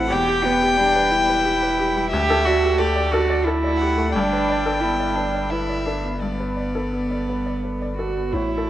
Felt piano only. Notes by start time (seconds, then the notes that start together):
Already playing: A2 C4 A4 B4 C5
0.10 E2
0.28 G4
0.45 B4
0.62 G4
0.79 G3
0.95 B4
1.13 G4
1.30 B4
1.45 G4
1.63 B4
1.80 G4
1.96 G3
2.13 D2
2.30 A4
2.47 D5
2.63 G4
2.79 A3
2.96 D5
3.13 A4
3.30 D5
3.47 A4
3.64 D5
3.81 G4
3.98 A3
4.15 G2
4.33 B4
4.50 D5
4.66 A4
4.83 B3
5.00 D5
5.17 B4
5.34 D5
5.52 B4
5.69 D5
5.87 A4
6.04 B3
6.21 G2
6.40 B4
6.57 D5
6.75 A4
6.93 B3
7.11 D5
7.29 B4
7.46 D5
7.64 B4
7.81 D5
7.99 A4
8.17 B3
8.34 A2
8.58 A4